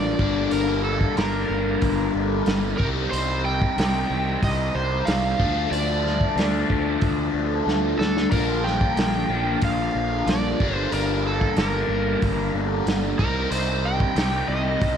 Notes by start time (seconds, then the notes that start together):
Already playing: A1 A#2 D3 F3 A#3 D4 D5
0.19 G1 G2 D3 G3 A#3 D4, kick
0.51 G1 A#4, open hi-hat
0.84 A4
1.01 kick
1.16 G1 G2 D3 G3 A#3 D4 A#4, snare, open hi-hat
1.49 G1
1.82 G1, kick, open hi-hat
2.15 G1
2.46 G1, snare, open hi-hat
2.77 C2 C3 G3 C4 D#4 A#4, kick
3.11 C2 C5, open hi-hat
3.45 G5
3.62 kick
3.78 C2 C3 G3 C4 D#4, snare, open hi-hat
4.10 C2
4.43 C2 D#5, kick, open hi-hat
4.75 C2 C5
5.05 C2 F5, snare, open hi-hat
5.39 D2 D3 F3 A3 D4, kick
5.71 D2 D5, open hi-hat
6.07 snare
6.21 kick
6.36 D2 D3 F3 A3, snare, open hi-hat
6.40 D4
6.70 D2, kick
7.01 D2, kick, open hi-hat
7.34 D2
7.67 D2, snare
7.98 D2 A4, snare
8.17 snare
8.31 A#1 A#2 D3 F3 A#3 D4 A#4, kick, open hi-hat
8.64 G5, snare
8.81 kick
8.97 A#1, snare, open hi-hat
9.29 A#1 A#2 D3 F3 A#3 D4
9.61 A#1 F5, kick, open hi-hat
9.95 A#1
10.26 A#1 D5, snare, open hi-hat
10.60 G1 G2 D3 G3 A#3 D4, kick
10.75 C5
10.92 G1 A#4, open hi-hat
11.27 A4
11.41 kick
11.56 G1 G2 D3 G3 A#3 D4 A#4, snare, open hi-hat
11.88 G1
12.22 G1, kick, open hi-hat
12.54 G1
12.86 G1, snare, open hi-hat
13.19 C2 C3 G3 C4 D#4 A#4, kick
13.51 C2 C5, open hi-hat
13.85 G5
14.00 kick
14.15 C2 C3 G3 C4 D#4, snare, open hi-hat
14.48 C2 D#5
14.81 C2, kick, open hi-hat